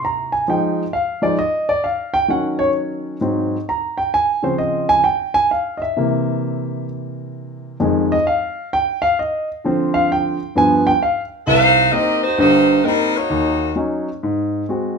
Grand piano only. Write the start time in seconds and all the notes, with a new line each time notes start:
Already playing: C3 A#3 E4
0.05 A#5
0.32 G#5
0.48 F3 G#3 D#4 G5
0.93 F5
1.22 F3 G#3 D#4 D5
1.39 D#5
1.69 D5
1.84 F5
2.14 G5
2.28 D#3 F#3 C#4 F#5
2.59 C#5
3.21 G#2 F#3 C4
3.69 A#5
3.98 G5
4.14 G#5
4.43 C#3 F3 C4 C5
4.58 D#5
4.89 G#5
5.04 G5
5.34 G#5
5.51 F5
5.77 D#5
5.82 E5
5.97 C3 E3 A#3
7.80 F2 D#3 G#3
8.12 D#5
8.27 F5
8.73 G5
9.02 F5
9.19 D#5
9.64 D3 F3 C4
9.94 F5
10.12 G5
10.55 G2 F3 B3 G#5
10.87 G5
11.03 F5
11.47 C2
11.93 A#3 C4 D#4
12.38 G1 G2
12.84 A#3 C4 D#4
13.30 D#2
13.76 F#3 C#4 D#4
14.23 G#2
14.69 G#3 C4 F#4